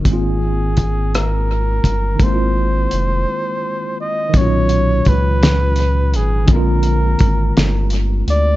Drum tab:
HH |x-xx-x|x-x---|xxxxxx|xxxxxx|
SD |---r--|------|---o--|---o--|
BD |o-o--o|o-----|o-o---|o-o---|